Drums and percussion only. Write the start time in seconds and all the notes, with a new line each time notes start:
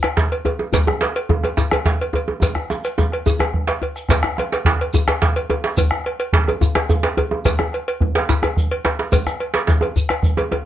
0.03 bombo rim, cowbell, djembe slap, djembe tone
0.17 bombo low, djembe slap, shekere
0.32 cowbell
0.45 cowbell, djembe slap, djembe tone
0.59 djembe tone
0.73 bombo rim, bombo low, cowbell, djembe slap, djembe bass, shekere
0.87 bombo rim, djembe slap, djembe tone, djembe bass
1.01 bombo rim, cowbell, djembe slap
1.15 cowbell, djembe slap
1.29 bombo low, djembe tone
1.43 bombo rim, cowbell, djembe tone
1.57 djembe slap, djembe bass, shekere
1.71 bombo rim, cowbell, djembe slap, djembe tone, djembe bass
1.85 bombo low, djembe slap, shekere
2.01 cowbell
2.13 cowbell, djembe slap, djembe tone
2.28 djembe tone
2.42 bombo low, cowbell, djembe slap, djembe tone, djembe bass, shekere
2.55 bombo rim, djembe slap, djembe tone
2.70 bombo rim, djembe tone, shekere
2.84 bombo rim, cowbell, shekere
2.98 bombo low, djembe slap, djembe tone, shekere
3.12 bombo rim, cowbell
3.26 djembe tone, djembe bass, shekere
3.39 bombo rim, cowbell, djembe slap, djembe tone
3.54 bombo low
3.67 cowbell, djembe slap
3.82 cowbell, djembe slap, djembe tone
3.96 bombo rim, shekere
4.09 bombo rim, bombo low, cowbell, djembe slap, djembe bass, shekere
4.23 bombo rim, djembe slap, djembe tone
4.37 bombo rim, cowbell, djembe slap, djembe tone
4.52 cowbell, djembe slap
4.65 bombo low, djembe slap, djembe tone
4.80 bombo rim, cowbell, djembe slap
4.94 djembe tone, djembe bass, shekere
5.08 bombo rim, cowbell, djembe slap, djembe tone
5.22 bombo low, djembe slap, shekere
5.36 cowbell
5.50 cowbell, djembe slap, djembe tone
5.64 djembe slap
5.77 bombo rim, bombo low, cowbell, djembe bass, shekere
5.91 bombo rim, djembe tone
6.05 bombo rim, cowbell, djembe slap
6.19 cowbell, djembe slap
6.33 bombo low, djembe slap
6.48 bombo rim, cowbell, djembe bass
6.61 djembe tone, djembe bass, shekere
6.75 bombo rim, cowbell, djembe slap, djembe tone
6.89 bombo low, djembe tone, shekere
7.03 cowbell, djembe slap
7.17 cowbell, djembe slap, djembe tone, djembe bass
7.31 djembe tone
7.45 bombo rim, bombo low, cowbell, djembe slap, djembe bass, shekere
7.59 bombo rim, djembe slap, djembe tone
7.73 bombo rim, cowbell, djembe slap
7.88 cowbell, djembe slap
8.01 bombo low, djembe tone
8.15 cowbell, djembe slap
8.29 djembe slap, djembe bass, shekere
8.43 bombo rim, cowbell, djembe slap, djembe tone
8.57 bombo low, shekere
8.71 cowbell
8.85 cowbell, djembe slap, djembe tone
8.99 djembe slap
9.12 bombo low, cowbell, djembe slap, djembe tone, djembe bass, shekere
9.27 bombo rim, djembe slap, djembe tone, shekere
9.40 bombo rim, cowbell, djembe slap
9.54 bombo rim, cowbell, djembe slap, shekere
9.67 bombo low, djembe slap, djembe tone, shekere
9.81 bombo rim, cowbell, djembe slap, djembe tone
9.96 djembe slap, djembe bass, shekere
10.09 bombo rim, cowbell, djembe slap, djembe tone
10.23 bombo low, shekere
10.37 cowbell, djembe tone
10.52 cowbell, djembe tone